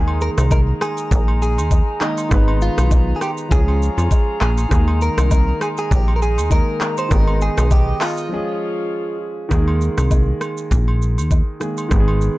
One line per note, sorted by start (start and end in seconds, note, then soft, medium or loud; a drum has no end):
0.00 0.30 D#2 loud
0.00 1.96 D#3 medium
0.00 1.97 G#3 medium
0.00 4.67 G#3 medium
0.00 1.98 A#3 medium
0.00 3.47 D#4 medium
0.00 0.22 G#4 loud
0.00 2.01 G#4 medium
0.00 2.29 A#4 medium
0.00 7.07 A#5 medium
0.08 high agogo medium
0.21 0.30 A#4 loud
0.21 shaker medium
0.38 0.74 C2 medium
0.38 cross-stick loud
0.38 high agogo medium
0.38 shaker medium
0.51 0.60 A#4 loud
0.51 kick medium
0.51 low woodblock medium
0.51 shaker medium
0.81 1.41 G#4 loud
0.81 cross-stick loud
0.81 high agogo medium
0.81 shaker soft
0.97 shaker medium
1.11 1.59 A#1 loud
1.11 kick loud
1.11 shaker medium
1.28 high agogo medium
1.42 2.04 G#4 loud
1.42 shaker medium
1.58 1.83 D#2 medium
1.58 high agogo medium
1.58 shaker medium
1.71 kick medium
1.71 low woodblock medium
1.71 shaker medium
2.00 2.28 D#3 soft
2.00 2.29 G#3 soft
2.00 2.32 A#3 soft
2.00 2.58 D#4 medium
2.00 2.32 G#4 medium
2.00 cross-stick medium
2.00 clap medium
2.00 shaker soft
2.18 high agogo medium
2.18 shaker medium
2.29 2.70 G#1 loud
2.29 3.48 D#3 medium
2.29 3.49 G#3 medium
2.29 3.49 B3 medium
2.29 3.50 B4 medium
2.29 kick loud
2.29 cross-stick loud
2.29 shaker medium
2.34 3.50 B4 medium
2.48 high agogo medium
2.61 3.17 F4 loud
2.61 shaker medium
2.78 3.14 B1 medium
2.78 cross-stick loud
2.78 high agogo medium
2.78 shaker medium
2.91 kick loud
2.91 low woodblock medium
2.91 shaker medium
3.16 3.22 G#4 medium
3.21 3.30 G4 loud
3.21 cross-stick medium
3.21 high agogo medium
3.21 shaker medium
3.37 shaker medium
3.49 3.90 C#2 loud
3.49 4.68 F3 medium
3.49 4.68 G#3 medium
3.49 4.69 C#4 medium
3.49 4.70 F4 medium
3.49 4.38 G#4 loud
3.49 4.70 C#5 medium
3.49 kick loud
3.49 shaker medium
3.54 4.70 G#4 medium
3.68 high agogo medium
3.82 shaker medium
3.98 4.09 F2 medium
3.98 high agogo medium
3.98 shaker medium
4.11 kick medium
4.11 low woodblock medium
4.11 shaker medium
4.41 4.66 A#1 loud
4.41 5.02 G#4 loud
4.41 cross-stick medium
4.41 clap medium
4.41 shaker soft
4.58 high agogo medium
4.58 shaker medium
4.69 5.10 D#2 loud
4.69 6.46 D#3 medium
4.69 6.47 G#3 medium
4.69 9.47 G#3 medium
4.69 6.48 A#3 medium
4.69 8.28 D#4 medium
4.69 7.09 A#4 medium
4.69 kick loud
4.69 cross-stick loud
4.69 shaker medium
4.74 6.49 G#4 medium
4.88 high agogo medium
5.01 5.31 A#4 loud
5.01 shaker medium
5.18 5.54 C2 medium
5.18 cross-stick loud
5.18 high agogo medium
5.18 shaker medium
5.31 5.62 A#4 loud
5.31 kick medium
5.31 low woodblock medium
5.31 shaker medium
5.61 5.67 G#4 loud
5.61 cross-stick loud
5.61 high agogo medium
5.61 shaker medium
5.77 5.92 G#4 loud
5.77 shaker medium
5.91 6.39 A#1 loud
5.91 6.16 G4 loud
5.91 kick loud
5.91 shaker medium
6.08 high agogo medium
6.16 6.22 A#4 medium
6.22 6.52 G#4 loud
6.22 shaker medium
6.38 6.63 D#2 medium
6.38 high agogo medium
6.38 shaker medium
6.50 7.07 D#3 medium
6.50 7.09 G#3 soft
6.50 7.11 A#3 soft
6.50 7.12 G#4 medium
6.50 6.98 A#4 loud
6.50 kick medium
6.50 low woodblock medium
6.50 shaker medium
6.81 cross-stick medium
6.81 clap medium
6.81 shaker soft
6.97 7.12 C5 loud
6.97 high agogo medium
6.97 shaker medium
7.09 7.50 G#1 loud
7.09 8.27 D#3 medium
7.09 8.28 G#3 medium
7.09 8.30 B3 medium
7.09 8.29 B3 medium
7.09 7.42 A#4 loud
7.09 9.49 D#5 medium
7.09 kick loud
7.09 cross-stick loud
7.09 shaker medium
7.14 7.20 G4 medium
7.20 8.33 D#4 medium
7.28 high agogo medium
7.41 7.70 G#4 loud
7.41 shaker medium
7.58 7.94 B1 medium
7.58 cross-stick loud
7.58 high agogo medium
7.58 shaker medium
7.71 8.03 G4 medium
7.71 kick medium
7.71 low woodblock medium
7.71 shaker medium
8.01 9.18 F4 medium
8.01 cross-stick medium
8.01 clap medium
8.01 open hi-hat medium
8.01 high agogo medium
8.01 shaker medium
8.17 shaker medium
8.29 9.48 F3 medium
8.29 9.48 G#3 medium
8.29 9.49 C#4 medium
8.29 9.50 F4 medium
8.29 9.50 C#5 medium
8.34 9.50 G#4 medium
9.49 9.90 D#2 loud
9.49 11.56 D#3 medium
9.49 11.57 G#3 medium
9.49 11.58 A#3 medium
9.49 kick loud
9.49 cross-stick loud
9.49 shaker medium
9.54 11.58 G#4 medium
9.68 high agogo medium
9.81 shaker medium
9.98 10.34 C2 medium
9.98 cross-stick loud
9.98 high agogo medium
9.98 shaker medium
10.11 kick medium
10.11 low woodblock medium
10.11 shaker medium
10.41 cross-stick medium
10.41 high agogo medium
10.41 shaker soft
10.57 shaker medium
10.71 11.19 A#1 loud
10.71 kick loud
10.71 shaker medium
10.88 high agogo medium
11.02 shaker medium
11.18 11.42 D#2 medium
11.18 high agogo medium
11.18 shaker medium
11.31 kick medium
11.31 low woodblock medium
11.31 shaker medium
11.60 11.87 D#3 medium
11.60 11.89 G#3 medium
11.60 11.91 A#3 medium
11.60 11.92 G#4 medium
11.60 cross-stick medium
11.60 shaker soft
11.77 high agogo medium
11.77 shaker medium
11.89 12.30 G#1 loud
11.89 12.38 D#3 medium
11.89 12.38 G#3 medium
11.89 12.38 B3 medium
11.89 kick loud
11.89 cross-stick loud
11.89 shaker medium
11.94 12.00 G4 medium
12.00 12.38 G#4 medium
12.08 high agogo medium
12.21 shaker medium